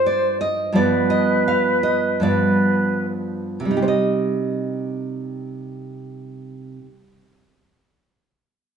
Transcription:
Already playing: nylon-string guitar G2 F3 D4, flute C5
0.06 nylon-string guitar D5
0.41 nylon-string guitar D#5
0.72 nylon-string guitar G2 F3 B3 D5, flute B4
1.10 nylon-string guitar D#5
1.48 nylon-string guitar F5
1.83 nylon-string guitar D#5
2.20 nylon-string guitar G2 F3 B3 D5
2.26 flute B4
3.60 nylon-string guitar C3
3.65 nylon-string guitar G3
3.71 nylon-string guitar D#4
3.77 nylon-string guitar G4
3.82 nylon-string guitar C5
3.88 nylon-string guitar D#5

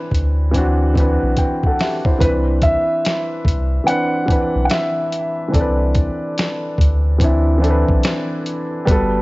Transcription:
Already playing: upright piano E3 C4 D4 B4
0.11 analog synth bass D2, kick, closed hi-hat
0.51 upright piano E3 C4, kick, closed hi-hat
0.55 upright piano D4 F#4
0.94 upright piano E3 C4, kick, closed hi-hat
0.98 upright piano D4 B4
1.23 analog synth bass B1
1.37 upright piano B4 G5, kick, closed hi-hat
1.63 upright piano A4 F#5, kick
1.79 upright piano G4 E5, snare, open hi-hat
2.05 upright piano E4 C5, kick
2.19 analog synth bass C2, upright piano E3 C4 D4, felt piano B4, kick, closed hi-hat
2.25 upright piano B4
2.62 felt piano E5, kick, closed hi-hat
3.05 snare, closed hi-hat
3.45 analog synth bass C2, kick, closed hi-hat
3.84 upright piano E3 C4 D4, felt piano F#5, closed hi-hat
3.89 upright piano B4
4.26 upright piano E3 C4 D4, kick
4.30 upright piano B4, closed hi-hat
4.56 analog synth bass B1
4.65 felt piano F#5
4.70 felt piano E5, snare, closed hi-hat
5.12 closed hi-hat
5.48 upright piano E3 C4
5.52 analog synth bass C2, upright piano D4 A4, felt piano D5, kick, closed hi-hat
5.61 upright piano B4
5.95 kick, closed hi-hat
6.38 snare, closed hi-hat
6.78 analog synth bass D2, kick, closed hi-hat
7.18 upright piano E3 C4 D4, kick, closed hi-hat
7.24 upright piano E4
7.58 upright piano E3 C4 D4
7.63 upright piano A4, closed hi-hat
7.70 upright piano B4
7.88 analog synth bass B1, kick
8.03 snare, closed hi-hat
8.46 closed hi-hat
8.86 analog synth bass G1, upright piano G3 B3, felt piano B4, kick, closed hi-hat
8.90 upright piano F#4 A4

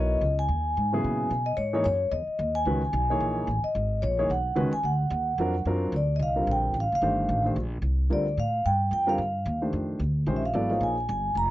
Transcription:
Already playing: upright bass B1, grand piano F#3 B3 E4 A#4 C#5, vibraphone D#5
0.21 upright bass C#2
0.39 vibraphone G#5
0.48 upright bass D#2
0.77 upright bass G#2
0.93 grand piano C#3 F#3 B3 E4 G#4
1.04 upright bass A#2
1.30 upright bass B2
1.46 vibraphone D#5
1.57 upright bass G#2, vibraphone C#5
1.73 grand piano E3 A#3 D#4 G#4 C#5
1.84 upright bass F#2, vibraphone C#5
2.11 upright bass E2, vibraphone D#5
2.27 muted upright bass stroke
2.39 upright bass D#2
2.55 vibraphone G#5
2.65 upright bass C#2, grand piano D#3 G#3 C#4 F#4 B4
2.93 upright bass B1
3.10 grand piano E3 A#3 D#4 G#4 C#5
3.20 upright bass A#1
3.47 upright bass A1
3.63 vibraphone D#5, muted upright bass stroke
3.75 upright bass G#1
4.02 upright bass A#1, vibraphone C#5
4.19 grand piano E3 A#3 D#4 G#4 C#5
4.30 upright bass B1, vibraphone F#5
4.56 upright bass C#2, grand piano D#3 G#3 C#4 F#4 B4
4.73 vibraphone G#5, muted upright bass stroke
4.83 upright bass D2, vibraphone F#5
5.10 upright bass D#2
5.38 upright bass F2, grand piano F#3 C4 D4 F4 A#4
5.65 upright bass F#2, grand piano F#3 C4 D4 F4 A#4
5.92 upright bass D2
5.96 vibraphone D5
6.16 upright bass C2, vibraphone D#5
6.23 vibraphone F5
6.36 grand piano D3 G3 C4 F4 A#4
6.47 upright bass A#1
6.51 vibraphone G5
6.74 upright bass A1
6.80 upright bass G1, vibraphone F5
6.92 upright bass F1, vibraphone F5
7.02 upright bass G1, grand piano D#3 A3 D4 G4 C5
7.29 upright bass A1
7.45 grand piano D#3 A3 D4 G4 C5
7.56 upright bass A#1
7.82 upright bass C2
8.10 upright bass D2, grand piano D3 G3 C4 F4 A#4, vibraphone D5
8.37 upright bass A2, vibraphone F5
8.66 upright bass G2, vibraphone G5
8.91 upright bass F2, vibraphone G5
9.07 grand piano D3 G3 C4 F4 A#4, vibraphone F5
9.18 upright bass G2
9.46 upright bass D#2
9.62 grand piano D#3 A3 D4 G4 C5
9.73 upright bass F2
9.99 upright bass D2
10.26 upright bass A#1, grand piano D#3 G#3 C#4 G4 C5
10.36 vibraphone E5
10.46 vibraphone F5
10.53 upright bass G#1, grand piano F#3 B3 E4 A4 D5
10.70 grand piano F3 A#3 D#4 G#4 C#5
10.80 upright bass A#1, vibraphone G#5
11.09 upright bass G1, vibraphone G#5
11.35 upright bass F1, vibraphone A#5

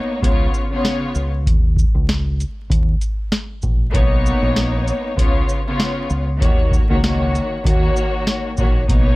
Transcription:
Already playing: string section A#3 B3 D#4 C#5
0.20 fingered electric bass C#2, string section C#3 B3 F4 C#5, kick, closed hi-hat
0.54 shaker
0.71 string section C#3 B3 F4 C#5
0.85 snare, closed hi-hat
1.15 fingered electric bass C#2, shaker
1.46 fingered electric bass D#2, kick, closed hi-hat
1.77 kick, shaker
1.95 fingered electric bass C#2
2.09 snare, closed hi-hat
2.40 closed hi-hat, shaker
2.70 fingered electric bass D#2, kick, closed hi-hat
3.01 closed hi-hat, shaker
3.32 snare, closed hi-hat
3.62 fingered electric bass A#1, kick, shaker
3.91 fingered electric bass B1, string section A#3 B3 D#4 C#5, kick, closed hi-hat
4.26 shaker
4.42 fingered electric bass A#1
4.56 snare, closed hi-hat
4.88 closed hi-hat, shaker
5.15 fingered electric bass C#2, string section C#3 B3 F4 C#5, kick, closed hi-hat
5.49 shaker
5.66 string section C#3 B3 F4 C#5
5.80 snare, closed hi-hat
6.10 fingered electric bass C#2, shaker
6.38 fingered electric bass D#2, string section D#3 A#3 F#4 C#5, kick
6.42 closed hi-hat
6.71 kick, shaker
6.88 fingered electric bass C#2, string section D#3 A#3 F#4 C#5
7.02 string section D#3 A#3 F#4 C#5, snare, closed hi-hat
7.35 closed hi-hat, shaker
7.63 fingered electric bass D#2, string section D#3 A#3 F#4 C#5, kick, closed hi-hat
7.96 shaker
8.27 snare, closed hi-hat
8.57 fingered electric bass A#1, string section D#3 A#3 F#4 C#5, kick, shaker
8.86 fingered electric bass B1, string section A#3 B3 D#4 C#5, kick, closed hi-hat

